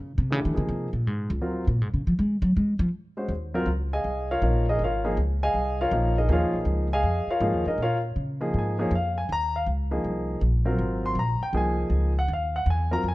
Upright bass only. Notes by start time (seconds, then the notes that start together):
Already playing: C#3
0.18 C3
0.32 C#3
0.45 D#3
0.57 C#3
0.69 C3
0.93 A#2
1.07 G#2
1.30 C#2
1.67 A#2
1.81 G#2
1.94 C#3
2.07 F3
2.19 G#3
2.42 F#3
2.57 G#3
2.79 F3
3.29 D#2
3.66 C#2
4.04 C2
4.42 A#1
4.79 G#1
5.17 C#2
5.54 C2
5.91 A#1
6.29 D#2
6.41 C#2
6.53 A#1
6.65 C#2
7.03 F2
7.27 muted upright bass stroke
7.40 G#2
7.53 D#2
7.66 C#2
7.78 A#2
8.16 C#3
8.54 G#2
8.91 F2
9.29 D#2
9.66 C#2
10.04 C2
10.41 A#1
10.78 G#1
11.15 A#1
11.41 muted upright bass stroke
11.53 C2
11.90 C#2
12.28 D#2
12.66 E2
13.03 F2